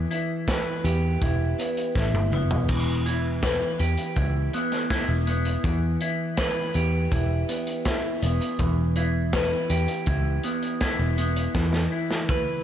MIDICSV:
0, 0, Header, 1, 4, 480
1, 0, Start_track
1, 0, Key_signature, 1, "minor"
1, 0, Tempo, 738007
1, 1750, Time_signature, 4, 2, 24, 8
1, 8218, End_track
2, 0, Start_track
2, 0, Title_t, "Clean electric guitar"
2, 0, Program_c, 0, 27
2, 0, Note_on_c, 0, 52, 66
2, 0, Note_on_c, 0, 59, 57
2, 0, Note_on_c, 0, 64, 67
2, 0, Note_on_c, 0, 67, 67
2, 0, Note_on_c, 0, 71, 75
2, 67, Note_off_c, 0, 64, 0
2, 69, Note_on_c, 0, 64, 63
2, 309, Note_off_c, 0, 71, 0
2, 312, Note_on_c, 0, 71, 71
2, 547, Note_off_c, 0, 67, 0
2, 549, Note_on_c, 0, 67, 71
2, 789, Note_off_c, 0, 64, 0
2, 791, Note_on_c, 0, 64, 68
2, 1030, Note_off_c, 0, 59, 0
2, 1032, Note_on_c, 0, 59, 57
2, 1273, Note_off_c, 0, 64, 0
2, 1276, Note_on_c, 0, 64, 66
2, 1509, Note_off_c, 0, 59, 0
2, 1512, Note_on_c, 0, 59, 59
2, 1748, Note_off_c, 0, 52, 0
2, 1750, Note_on_c, 0, 52, 73
2, 1987, Note_off_c, 0, 64, 0
2, 1990, Note_on_c, 0, 64, 65
2, 2231, Note_off_c, 0, 71, 0
2, 2234, Note_on_c, 0, 71, 74
2, 2469, Note_off_c, 0, 67, 0
2, 2472, Note_on_c, 0, 67, 66
2, 2709, Note_off_c, 0, 64, 0
2, 2711, Note_on_c, 0, 64, 69
2, 2953, Note_off_c, 0, 59, 0
2, 2955, Note_on_c, 0, 59, 62
2, 3190, Note_off_c, 0, 64, 0
2, 3192, Note_on_c, 0, 64, 75
2, 3427, Note_off_c, 0, 59, 0
2, 3430, Note_on_c, 0, 59, 63
2, 3672, Note_off_c, 0, 52, 0
2, 3674, Note_on_c, 0, 52, 70
2, 3909, Note_off_c, 0, 64, 0
2, 3912, Note_on_c, 0, 64, 63
2, 4148, Note_off_c, 0, 71, 0
2, 4150, Note_on_c, 0, 71, 67
2, 4390, Note_off_c, 0, 67, 0
2, 4393, Note_on_c, 0, 67, 63
2, 4633, Note_off_c, 0, 64, 0
2, 4636, Note_on_c, 0, 64, 64
2, 4868, Note_off_c, 0, 59, 0
2, 4870, Note_on_c, 0, 59, 62
2, 5110, Note_off_c, 0, 64, 0
2, 5113, Note_on_c, 0, 64, 73
2, 5347, Note_off_c, 0, 59, 0
2, 5350, Note_on_c, 0, 59, 68
2, 5590, Note_off_c, 0, 52, 0
2, 5592, Note_on_c, 0, 52, 69
2, 5830, Note_off_c, 0, 64, 0
2, 5832, Note_on_c, 0, 64, 71
2, 6068, Note_off_c, 0, 71, 0
2, 6071, Note_on_c, 0, 71, 74
2, 6306, Note_off_c, 0, 67, 0
2, 6309, Note_on_c, 0, 67, 74
2, 6550, Note_off_c, 0, 64, 0
2, 6552, Note_on_c, 0, 64, 65
2, 6789, Note_off_c, 0, 59, 0
2, 6791, Note_on_c, 0, 59, 58
2, 7025, Note_off_c, 0, 64, 0
2, 7033, Note_on_c, 0, 64, 73
2, 7264, Note_off_c, 0, 59, 0
2, 7271, Note_on_c, 0, 59, 63
2, 7512, Note_off_c, 0, 52, 0
2, 7515, Note_on_c, 0, 52, 65
2, 7744, Note_off_c, 0, 64, 0
2, 7752, Note_on_c, 0, 64, 68
2, 7991, Note_off_c, 0, 71, 0
2, 7994, Note_on_c, 0, 71, 78
2, 8218, Note_off_c, 0, 52, 0
2, 8218, Note_off_c, 0, 59, 0
2, 8218, Note_off_c, 0, 64, 0
2, 8218, Note_off_c, 0, 67, 0
2, 8218, Note_off_c, 0, 71, 0
2, 8218, End_track
3, 0, Start_track
3, 0, Title_t, "Picked electric bass"
3, 0, Program_c, 1, 34
3, 550, Note_on_c, 1, 40, 93
3, 753, Note_off_c, 1, 40, 0
3, 794, Note_on_c, 1, 28, 91
3, 995, Note_off_c, 1, 28, 0
3, 1273, Note_on_c, 1, 33, 78
3, 1380, Note_off_c, 1, 33, 0
3, 1392, Note_on_c, 1, 31, 76
3, 1499, Note_off_c, 1, 31, 0
3, 1509, Note_on_c, 1, 30, 79
3, 1617, Note_off_c, 1, 30, 0
3, 1636, Note_on_c, 1, 28, 78
3, 1741, Note_off_c, 1, 28, 0
3, 1751, Note_on_c, 1, 28, 99
3, 2359, Note_off_c, 1, 28, 0
3, 2471, Note_on_c, 1, 40, 91
3, 2572, Note_off_c, 1, 40, 0
3, 2710, Note_on_c, 1, 37, 100
3, 2913, Note_off_c, 1, 37, 0
3, 3309, Note_on_c, 1, 28, 83
3, 3614, Note_off_c, 1, 28, 0
3, 3669, Note_on_c, 1, 40, 96
3, 3872, Note_off_c, 1, 40, 0
3, 4392, Note_on_c, 1, 40, 91
3, 4594, Note_off_c, 1, 40, 0
3, 4630, Note_on_c, 1, 28, 100
3, 4833, Note_off_c, 1, 28, 0
3, 5351, Note_on_c, 1, 28, 85
3, 5453, Note_off_c, 1, 28, 0
3, 5588, Note_on_c, 1, 28, 94
3, 6199, Note_off_c, 1, 28, 0
3, 6310, Note_on_c, 1, 40, 95
3, 6412, Note_off_c, 1, 40, 0
3, 6550, Note_on_c, 1, 37, 94
3, 6754, Note_off_c, 1, 37, 0
3, 7150, Note_on_c, 1, 28, 77
3, 7456, Note_off_c, 1, 28, 0
3, 7510, Note_on_c, 1, 40, 84
3, 7714, Note_off_c, 1, 40, 0
3, 8218, End_track
4, 0, Start_track
4, 0, Title_t, "Drums"
4, 72, Note_on_c, 9, 42, 57
4, 137, Note_off_c, 9, 42, 0
4, 311, Note_on_c, 9, 36, 98
4, 314, Note_on_c, 9, 42, 55
4, 315, Note_on_c, 9, 38, 107
4, 376, Note_off_c, 9, 36, 0
4, 379, Note_off_c, 9, 42, 0
4, 380, Note_off_c, 9, 38, 0
4, 553, Note_on_c, 9, 42, 65
4, 618, Note_off_c, 9, 42, 0
4, 792, Note_on_c, 9, 36, 104
4, 794, Note_on_c, 9, 42, 61
4, 857, Note_off_c, 9, 36, 0
4, 859, Note_off_c, 9, 42, 0
4, 1037, Note_on_c, 9, 42, 72
4, 1102, Note_off_c, 9, 42, 0
4, 1154, Note_on_c, 9, 42, 51
4, 1219, Note_off_c, 9, 42, 0
4, 1272, Note_on_c, 9, 36, 90
4, 1275, Note_on_c, 9, 38, 46
4, 1337, Note_off_c, 9, 36, 0
4, 1340, Note_off_c, 9, 38, 0
4, 1397, Note_on_c, 9, 48, 58
4, 1462, Note_off_c, 9, 48, 0
4, 1515, Note_on_c, 9, 45, 67
4, 1580, Note_off_c, 9, 45, 0
4, 1631, Note_on_c, 9, 43, 77
4, 1696, Note_off_c, 9, 43, 0
4, 1747, Note_on_c, 9, 42, 57
4, 1747, Note_on_c, 9, 55, 73
4, 1750, Note_on_c, 9, 36, 107
4, 1812, Note_off_c, 9, 42, 0
4, 1812, Note_off_c, 9, 55, 0
4, 1815, Note_off_c, 9, 36, 0
4, 1992, Note_on_c, 9, 42, 65
4, 2057, Note_off_c, 9, 42, 0
4, 2228, Note_on_c, 9, 42, 60
4, 2229, Note_on_c, 9, 36, 110
4, 2230, Note_on_c, 9, 38, 103
4, 2293, Note_off_c, 9, 42, 0
4, 2294, Note_off_c, 9, 36, 0
4, 2295, Note_off_c, 9, 38, 0
4, 2468, Note_on_c, 9, 42, 61
4, 2533, Note_off_c, 9, 42, 0
4, 2585, Note_on_c, 9, 42, 53
4, 2650, Note_off_c, 9, 42, 0
4, 2706, Note_on_c, 9, 42, 56
4, 2709, Note_on_c, 9, 36, 99
4, 2771, Note_off_c, 9, 42, 0
4, 2774, Note_off_c, 9, 36, 0
4, 2949, Note_on_c, 9, 42, 58
4, 3014, Note_off_c, 9, 42, 0
4, 3070, Note_on_c, 9, 42, 52
4, 3071, Note_on_c, 9, 38, 31
4, 3135, Note_off_c, 9, 42, 0
4, 3136, Note_off_c, 9, 38, 0
4, 3190, Note_on_c, 9, 36, 100
4, 3190, Note_on_c, 9, 42, 49
4, 3191, Note_on_c, 9, 38, 81
4, 3255, Note_off_c, 9, 36, 0
4, 3255, Note_off_c, 9, 42, 0
4, 3256, Note_off_c, 9, 38, 0
4, 3429, Note_on_c, 9, 42, 55
4, 3494, Note_off_c, 9, 42, 0
4, 3546, Note_on_c, 9, 42, 63
4, 3611, Note_off_c, 9, 42, 0
4, 3668, Note_on_c, 9, 42, 57
4, 3669, Note_on_c, 9, 36, 104
4, 3733, Note_off_c, 9, 42, 0
4, 3734, Note_off_c, 9, 36, 0
4, 3906, Note_on_c, 9, 42, 59
4, 3971, Note_off_c, 9, 42, 0
4, 4145, Note_on_c, 9, 42, 64
4, 4146, Note_on_c, 9, 38, 116
4, 4148, Note_on_c, 9, 36, 96
4, 4210, Note_off_c, 9, 42, 0
4, 4211, Note_off_c, 9, 38, 0
4, 4213, Note_off_c, 9, 36, 0
4, 4385, Note_on_c, 9, 42, 61
4, 4450, Note_off_c, 9, 42, 0
4, 4628, Note_on_c, 9, 42, 59
4, 4629, Note_on_c, 9, 36, 105
4, 4693, Note_off_c, 9, 42, 0
4, 4694, Note_off_c, 9, 36, 0
4, 4871, Note_on_c, 9, 42, 68
4, 4936, Note_off_c, 9, 42, 0
4, 4989, Note_on_c, 9, 42, 53
4, 5054, Note_off_c, 9, 42, 0
4, 5108, Note_on_c, 9, 42, 57
4, 5109, Note_on_c, 9, 38, 100
4, 5110, Note_on_c, 9, 36, 96
4, 5173, Note_off_c, 9, 42, 0
4, 5174, Note_off_c, 9, 38, 0
4, 5175, Note_off_c, 9, 36, 0
4, 5350, Note_on_c, 9, 42, 65
4, 5415, Note_off_c, 9, 42, 0
4, 5470, Note_on_c, 9, 42, 57
4, 5535, Note_off_c, 9, 42, 0
4, 5587, Note_on_c, 9, 42, 61
4, 5589, Note_on_c, 9, 36, 103
4, 5652, Note_off_c, 9, 42, 0
4, 5654, Note_off_c, 9, 36, 0
4, 5826, Note_on_c, 9, 42, 59
4, 5891, Note_off_c, 9, 42, 0
4, 6068, Note_on_c, 9, 42, 61
4, 6069, Note_on_c, 9, 38, 109
4, 6070, Note_on_c, 9, 36, 99
4, 6133, Note_off_c, 9, 42, 0
4, 6134, Note_off_c, 9, 38, 0
4, 6135, Note_off_c, 9, 36, 0
4, 6307, Note_on_c, 9, 42, 66
4, 6372, Note_off_c, 9, 42, 0
4, 6427, Note_on_c, 9, 42, 54
4, 6492, Note_off_c, 9, 42, 0
4, 6545, Note_on_c, 9, 42, 54
4, 6550, Note_on_c, 9, 36, 103
4, 6610, Note_off_c, 9, 42, 0
4, 6615, Note_off_c, 9, 36, 0
4, 6787, Note_on_c, 9, 42, 60
4, 6852, Note_off_c, 9, 42, 0
4, 6911, Note_on_c, 9, 42, 50
4, 6976, Note_off_c, 9, 42, 0
4, 7029, Note_on_c, 9, 42, 57
4, 7030, Note_on_c, 9, 38, 93
4, 7032, Note_on_c, 9, 36, 94
4, 7094, Note_off_c, 9, 42, 0
4, 7095, Note_off_c, 9, 38, 0
4, 7097, Note_off_c, 9, 36, 0
4, 7272, Note_on_c, 9, 42, 54
4, 7337, Note_off_c, 9, 42, 0
4, 7391, Note_on_c, 9, 42, 55
4, 7456, Note_off_c, 9, 42, 0
4, 7510, Note_on_c, 9, 38, 57
4, 7511, Note_on_c, 9, 36, 99
4, 7575, Note_off_c, 9, 38, 0
4, 7576, Note_off_c, 9, 36, 0
4, 7629, Note_on_c, 9, 38, 51
4, 7694, Note_off_c, 9, 38, 0
4, 7874, Note_on_c, 9, 38, 62
4, 7939, Note_off_c, 9, 38, 0
4, 7993, Note_on_c, 9, 36, 105
4, 7993, Note_on_c, 9, 48, 68
4, 8058, Note_off_c, 9, 36, 0
4, 8058, Note_off_c, 9, 48, 0
4, 8218, End_track
0, 0, End_of_file